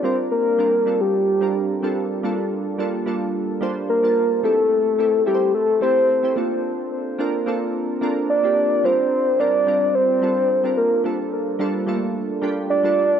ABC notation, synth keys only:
X:1
M:4/4
L:1/16
Q:1/4=109
K:Gdor
V:1 name="Synth keys"
[G,CDFB]3 z [G,CDFB]2 [G,CDFA]3 z [G,CDFB]2 z [G,CDFA]2 z | [G,B,DFA]3 z [G,B,DFA]2 [G,B,DFA]3 z [G,B,DFc]2 z [G,B,DFa]2 z | [A,CEGA]3 z [A,CEGA]2 [A,CEGBc]3 z [A,CEGA]2 z [A,CEGc] [B,CDFA]2- | [B,CDFA]3 z [B,CDFB]2 [B,CDFA]3 z [B,CDFB]2 z [B,CDFG]2 z |
[G,CDFB]3 z [G,CDFB]2 [G,CDFB]3 z [G,CDFA]2 z [G,CDFB]2 z | [G,B,DFA]3 z [G,B,DFA]2 [G,A,B,DFA]3 z [G,B,DFG]2 z [G,B,DFA]2 z |]